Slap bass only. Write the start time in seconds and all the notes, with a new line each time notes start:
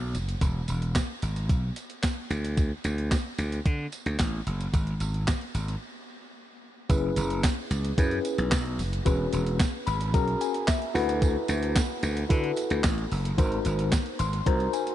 Already playing: B1
0.15 F#1
0.41 E1
0.68 E1
1.22 G#1
1.49 B1
2.30 D2
2.85 D2
3.38 D2
3.66 D3
4.06 D2
4.20 A1
4.46 F#1
4.74 G#1
5.00 G#1
5.54 G#1
6.90 F#1
7.16 F#1
7.71 C#2
7.98 F#2
8.38 B1
8.52 B1
8.79 F#1
9.06 E1
9.33 E1
9.87 G#1
10.14 B1
10.95 D2
11.49 D2
12.03 D2
12.30 D3
12.71 D2
12.84 A1
13.12 F#1
13.38 G#1
13.65 G#1
14.19 G#1
14.46 C2